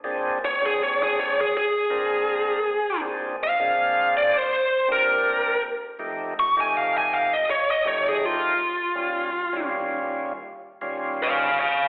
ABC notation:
X:1
M:4/4
L:1/16
Q:"Swing 16ths" 1/4=81
K:Bbmix
V:1 name="Lead electric guitar"
z2 _d A d A d A A8 | z2 f4 d c3 B4 z2 | z2 _d' a f a f e _d e d A F4- | F4 z8 [_df]2 [df]2 |]
V:2 name="Tonewheel organ"
[B,,CDA]2 z [B,,CDA]4 z3 [B,,CDB]4 z2 | [B,,CDA]2 z [B,,CDA]4 z3 [B,,CDG]4 z2 | [F,,=A,EG]2 z [F,,A,EG]4 z3 [F,,A,EG]4 z2 | [E,,G,_DF]2 z [E,,G,DF]4 z3 [E,,G,DF]4 z2 |]